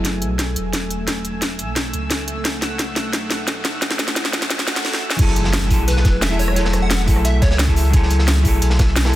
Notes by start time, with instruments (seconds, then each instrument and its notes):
Already playing: sub bass F#1, hollow-body jazz guitar F#3 E4 G#4 A4, analog synth pad A3 G#5 E6, riser
0.05 kick, snare, closed hi-hat
0.22 sub bass B1, closed hi-hat
0.39 kick, snare, closed hi-hat
0.56 sub bass E1, closed hi-hat
0.73 kick, snare, closed hi-hat
0.90 closed hi-hat
1.08 kick, snare, closed hi-hat
1.25 closed hi-hat
1.42 kick, snare, closed hi-hat
1.59 sub bass B1, closed hi-hat
1.76 kick, snare, closed hi-hat
1.93 sub bass C#2, closed hi-hat
2.10 kick, snare, closed hi-hat
2.28 closed hi-hat
2.45 analog synth pad F#5, kick, snare, closed hi-hat
2.62 snare, closed hi-hat
2.79 kick, snare, closed hi-hat
2.96 sub bass B1, snare, closed hi-hat
3.13 sub bass B1, kick, snare, closed hi-hat
3.31 snare, closed hi-hat
3.48 kick, snare, closed hi-hat
3.65 sub bass F#1, snare, closed hi-hat
3.82 kick, snare, closed hi-hat
3.91 snare
3.99 snare, closed hi-hat
4.08 snare
4.16 kick, snare, closed hi-hat
4.25 snare
4.33 sub bass B1, snare, closed hi-hat
4.42 snare
4.50 kick, snare, closed hi-hat, swell
4.59 snare
4.67 snare, closed hi-hat
4.76 snare
4.85 snare
4.93 snare
5.02 analog synth pad G#5 E6
5.10 snare
5.16 sub bass F#1, hollow-body jazz guitar F#3 E4, analog synth pad A3 G#5 E6, kick, closed hi-hat, crash, impact
5.20 hollow-body jazz guitar G#4 A4, closed hi-hat
5.28 snare
5.36 closed hi-hat
5.44 snare
5.53 snare, closed hi-hat
5.67 sub bass B1, hollow-body jazz guitar F#3 E4, kick, closed hi-hat, open hi-hat
5.71 hollow-body jazz guitar G#4 A4
5.88 digital synth lead B4, closed hi-hat
5.97 snare
6.05 sub bass E1, kick, snare, closed hi-hat
6.22 digital synth lead E5, snare, closed hi-hat
6.29 hollow-body jazz guitar F#3 E4 G#4 A4, closed hi-hat
6.39 digital synth lead C#5, closed hi-hat, open hi-hat
6.48 cross-stick
6.53 hollow-body jazz guitar F#3 E4, closed hi-hat
6.57 hollow-body jazz guitar G#4 A4, closed hi-hat
6.65 snare
6.73 cross-stick, closed hi-hat
6.82 digital synth lead F#5
6.91 snare, closed hi-hat
7.04 sub bass B1, hollow-body jazz guitar F#3 E4, kick, closed hi-hat, open hi-hat
7.09 hollow-body jazz guitar G#4 A4
7.16 cross-stick
7.25 digital synth lead E5, closed hi-hat
7.42 sub bass C#2, digital synth lead C#5, kick, snare, closed hi-hat
7.51 digital synth lead C#5, snare
7.59 snare, closed hi-hat
7.66 hollow-body jazz guitar F#3 E4 G#4 A4, kick
7.76 closed hi-hat, open hi-hat
7.85 closed hi-hat
7.90 hollow-body jazz guitar F#3 E4, kick, closed hi-hat
7.94 hollow-body jazz guitar G#4 A4, closed hi-hat
8.03 snare
8.10 closed hi-hat
8.19 snare
8.28 snare, closed hi-hat
8.41 hollow-body jazz guitar F#3 E4, kick, open hi-hat
8.45 sub bass B1, hollow-body jazz guitar G#4 A4, closed hi-hat
8.62 sub bass B1, closed hi-hat
8.70 snare
8.79 kick, snare, closed hi-hat
8.96 snare, closed hi-hat
9.03 hollow-body jazz guitar F#3 E4 G#4 A4, snare, closed hi-hat